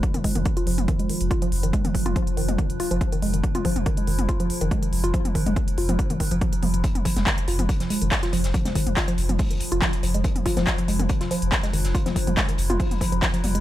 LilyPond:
<<
  \new Staff \with { instrumentName = "Synth arpeggio sound" } { \clef bass \time 4/4 \key f \minor \tempo 4 = 141 r16 ees16 aes16 ees16 r16 f'16 f16 r16 ees16 aes16 ees16 r16 f'16 f16 r16 ees16 | aes16 ees16 r16 f'16 f16 r16 ees16 aes16 ees16 r16 f'16 f16 r16 ees16 aes16 ees16 | r16 f'16 f16 r16 ees16 aes16 ees16 r16 f'16 f16 r16 ees16 aes16 ees16 r16 f'16 | f16 r16 ees16 aes16 ees16 r16 f'16 f16 r16 ees16 ees16 f16 f16 f16 f16 f16 |
f16 r16 f16 aes16 ees16 r16 f'16 f16 r16 f16 aes16 ees16 r16 f'16 f16 r16 | f16 aes16 ees16 r16 f'16 f16 r16 f16 aes16 ees16 r16 f'16 f16 r16 f16 aes16 | ees16 r16 f'16 f16 r16 f16 aes16 ees16 r16 f'16 f16 r16 f16 aes16 ees16 r16 | f'16 f16 r16 f16 aes16 ees16 r16 f'16 f16 r16 f16 f16 f16 f16 g16 aes16 | }
  \new Staff \with { instrumentName = "Synth drone" } { \clef bass \time 4/4 \key f \minor f1~ | f1~ | f1~ | f1 |
f1~ | f1~ | f1~ | f1 | }
  \new Staff \with { instrumentName = "Sub bass" } { \clef bass \time 4/4 \key f \minor r16 f,,16 r16 f,,16 r8 f,,16 f,,16 r16 f,,16 r16 f,,16 r8 f,,16 f,,16 | r16 f,,16 r16 f,,16 r8 f,,16 f,,16 r16 f,,16 r16 f,,16 r8 f,,16 f,,16 | r16 f,,16 r16 f,,16 r8 f,,16 f,,16 r16 f,,16 r16 f,,16 r8 f,,16 f,,16 | r16 f,,16 r16 f,,16 r8 f,,16 f,,16 r16 f,,16 r16 f,,16 r8 f,,16 f,,16 |
r16 f,,16 r16 f,,16 r8 f,,16 f,,16 r16 f,,16 r16 f,,16 r8 f,,16 f,,16 | r16 f,,16 r16 f,,16 r8 f,,16 f,,16 r16 f,,16 r16 f,,16 r8 f,,16 f,,16 | r16 f,,16 r16 f,,16 r8 f,,16 f,,16 r16 f,,16 r16 f,,16 r8 f,,16 f,,16 | r16 f,,16 r16 f,,16 r8 f,,16 f,,16 r16 f,,16 r16 f,,16 r8 f,,16 f,,16 | }
  \new DrumStaff \with { instrumentName = "Drums" } \drummode { \time 4/4 <hh bd>16 <hh toml>16 <hho bd>16 <hh toml>16 <hh bd>16 hh16 hho16 <hh toml>16 <hh bd>16 hh16 hho16 hh16 <hh bd>16 hh16 hho16 hh16 | <hh bd>16 <hh toml>16 <hho bd>16 <hh toml>16 <hh bd>16 hh16 hho16 <hh toml>16 <hh bd>16 hh16 hho16 hh16 <hh bd>16 hh16 hho16 hh16 | <hh bd>16 <hh toml>16 <hho bd>16 <hh toml>16 <hh bd>16 hh16 hho16 <hh toml>16 <hh bd>16 hh16 hho16 hh16 <hh bd>16 hh16 hho16 hh16 | <hh bd>16 <hh toml>16 <hho bd>16 <hh toml>16 <hh bd>16 hh16 hho16 <hh toml>16 <hh bd>16 <hh toml>16 <hho bd>16 hh16 <hh bd>16 hh16 <hho toml>16 hh16 |
<hh bd>16 <hh toml>16 <hh hho bd>16 <hh sn toml>16 <hc hh bd sn>16 hh16 <hh hho>16 <hh toml>16 <hh bd>16 <hh sn>16 <hh hho>16 hh16 <hc hh bd sn>16 <hh sn>16 <hh hho>16 <hh sn>16 | <hh bd>16 <hh sn toml>16 <hh hho bd>16 <hh toml>16 <hc hh bd sn>16 hh16 <hh hho>16 <hh toml>16 <hh hho bd>16 hh16 <hh hho>16 hh16 <hc hh bd sn>16 hh16 <hh hho>16 hh16 | <hh bd>16 <hh toml>16 <hh hho bd>16 <hh sn toml>16 <hc hh bd sn>16 hh16 <hh hho>16 <hh toml>16 <hh bd>16 <hh sn>16 <hh hho>16 hh16 <hc hh bd sn>16 <hh sn>16 <hh hho>16 <hh sn>16 | <hh bd>16 <hh sn toml>16 <hh hho bd>16 <hh toml>16 <hc hh bd sn>16 hh16 <hh hho>16 <hh toml>16 <hh hho bd>16 <hh toml>16 <hh hho bd>16 hh16 <hc hh bd sn>16 hh16 <hh hho toml>16 hh16 | }
>>